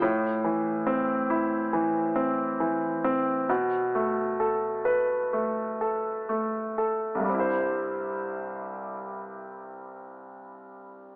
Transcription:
\new Staff \with { instrumentName = "Grand piano" } { \time 4/4 \key c \major \tempo 4 = 64 a,8 e8 c'8 e'8 e8 c'8 e8 c'8 | b,8 a8 a'8 b'8 a8 a'8 a8 a'8 | <c, g, g c' e' c''>1 | }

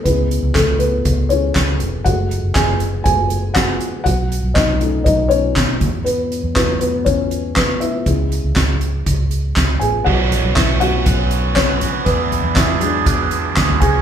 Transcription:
<<
  \new Staff \with { instrumentName = "Felt piano" } { \time 4/4 \key b \dorian \tempo 4 = 120 <b b'>4 <a a'>8 <b b'>4 cis''4. | <fis' fis''>4 <gis' gis''>4 <gis' gis''>4 <fis' fis''>4 | <fis' fis''>4 <dis' dis''>4 <dis' dis''>8 <cis' cis''>4. | <b b'>4 b'8 <b b'>8 <cis' cis''>4 <b b'>8 <e' e''>8~ |
<e' e''>2. r8 <gis' gis''>8 | <fis' fis''>4 <e' e''>8 <fis' fis''>4. <cis' cis''>4 | <b b'>4 <e' e''>4 r4. <gis' gis''>8 | }
  \new Staff \with { instrumentName = "Felt piano" } { \time 4/4 \key b \dorian <gis cis' e'>2~ <gis cis' e'>8 <gis cis' e'>8 r4 | <gis a>4. r8 <gis a fis'>8 r4. | r4. <a cis' dis'>8 r2 | r4 <fis b e'>4. r4. |
<gis cis' e'>1 | r4. <fis b cis'>2~ <fis b cis'>8 | r4. <fis gis d'>8 r2 | }
  \new Staff \with { instrumentName = "Overdriven electric guitar" } { \time 4/4 \key b \dorian r1 | r1 | r1 | r1 |
r1 | <b, fis b cis' fis'>4 <fis b cis' fis'>8 <b cis' fis'>8 <fis b cis' fis'>4 <fis b cis' fis'>8 <b cis' fis'>8 | <e b d' gis'>4 <e b d' gis'>8 <b d' gis'>8 <e b d' gis'>4 <e b d' gis'>8 <cis' fis' gis'>8 | }
  \new Staff \with { instrumentName = "Fingered electric bass" } { \clef bass \time 4/4 \key b \dorian cis,8. cis,16 cis,4 cis,4 cis,8 e,,8 | fis,,8. fis,,16 fis,,4 fis,,4. r8 | b,,8. b,,16 b,,4 b,,4 b,8 e,8~ | e,8. e,16 e,4 e,4. r8 |
cis,8. cis,16 cis,4 cis,4 cis,8 a,,8 | b,,8. b,,16 b,,4 b,,4. r8 | e,8. e,16 e,4 e,4 d,8 cis,8 | }
  \new DrumStaff \with { instrumentName = "Drums" } \drummode { \time 4/4 <hh bd>8 hh8 <hc hh bd sn>8 hh8 <hh bd>8 hh8 <hc hh bd sn>8 hh8 | <hh bd>8 hh8 <hc hh bd sn>8 hh8 <hh bd>8 hh8 <hc hh bd sn>8 hh8 | <hh bd>8 hh8 <hc hh bd sn>8 hh8 <hh bd>8 hh8 <hc hh bd sn>8 <hh bd>8 | hh8 hh8 <hc hh bd sn>8 hh8 <hh bd>8 hh8 <hc hh bd sn>8 hh8 |
<hh bd>8 hh8 <hc hh bd sn>8 hh8 <hh bd>8 hh8 <hc hh bd sn>8 hh8 | <cymc bd>8 <hh tomfh>8 <hc hh bd sn>8 hh8 <hh bd>8 hh8 <hc hh bd sn>8 <hh tomfh>8 | <hh bd>8 <hh tomfh>8 <hc hh bd sn>8 hh8 <hh bd>8 hh8 <hc hh bd sn>16 tomfh16 <hh bd tomfh>8 | }
>>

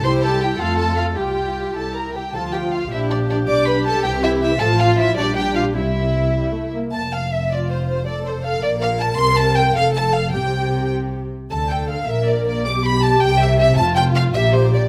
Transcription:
<<
  \new Staff \with { instrumentName = "Violin section" } { \time 6/8 \key f \major \tempo 4. = 105 c'''8 a''8 g''8 f''8 a''8 f''8 | g''4. a''8 bes''8 g''8 | a''8 g''8 f''8 e''8 d''8 d''8 | d'''8 b''8 a''8 g''8 e''8 e''8 |
a''8 f''8 e''8 d''8 g''8 f''8 | e''2~ e''8 r8 | a''8 f''8 e''8 d''8 c''8 c''8 | d''8 c''8 f''8 d''8 f''8 a''8 |
c'''8 a''8 g''8 f''8 a''8 f''8 | g''4. r4. | a''8 g''8 f''8 e''8 d''8 d''8 | d'''8 b''8 a''8 g''8 e''8 e''8 |
a''8 g''8 f''8 e''8 c''8 d''8 | }
  \new Staff \with { instrumentName = "Violin section" } { \time 6/8 \key f \major c''8 a'8 g'8 f'8 a'8 f'8 | g'4. a'8 bes'8 g'8 | a'8 g'8 f'8 e'8 d'8 d'8 | d''8 b'8 a'8 g'8 e'8 e'8 |
a'8 f'8 e'8 d'8 g'8 f'8 | e'2~ e'8 r8 | a''8 f''8 e''8 d''8 c''8 c''8 | d''8 c''8 f''8 d''8 f''8 a''8 |
c'''8 a''8 g''8 f''8 a''8 f''8 | g''4. r4. | a''8 g''8 f''8 e''8 d''8 d''8 | d'''8 b''8 a''8 g''8 e''8 e''8 |
a''8 g''8 f''8 e''8 c''8 d''8 | }
  \new Staff \with { instrumentName = "Viola section" } { \time 6/8 \key f \major <g e'>4. <a f'>4. | <g f'>4. <g e'>4 r8 | <f f'>4. <f d'>4. | <g d'>4. <e c'>4. |
<f f'>4. <g d'>4. | <g c'>4. g8 a8 bes8 | r4. f'4. | a'4. bes'4.~ |
bes'4. a'4. | g'2~ g'16 r8. | a'4. bes'4. | g'2. |
f'4. g'4. | }
  \new Staff \with { instrumentName = "Cello section" } { \clef bass \time 6/8 \key f \major g'4. a'4. | g'2~ g'16 r8. | f'4. g'4.~ | g'2. |
f'4. g'4. | e'2~ e'16 r8. | f,2.~ | f,4. bes,4. |
c4. f,4. | c2~ c8 r8 | d4. bes,4. | b,4. c4. |
f,4. bes,4. | }
  \new Staff \with { instrumentName = "Double bass section" } { \clef bass \time 6/8 \key f \major c,4. f,4. | c,4. c,4 r8 | d,4. bes,,4. | b,,4. c,4. |
a,,4. bes,,4. | c,2~ c,8 r8 | f,,2.~ | f,,4. bes,,4. |
c,4. f,,4. | c,2~ c,8 r8 | d,4. bes,,4. | b,,4. c,4. |
f,,4. bes,,4. | }
>>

